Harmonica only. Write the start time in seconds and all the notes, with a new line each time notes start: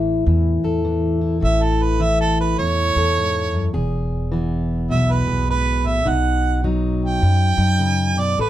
1.45 E5
1.64 A4
1.83 B4
2.02 E5
2.21 A4
2.41 B4
2.59 C#5
4.91 E5
5.12 B4
5.50 B4
5.87 E5
6.08 F#5
7.05 G5
8.20 D5
8.41 B4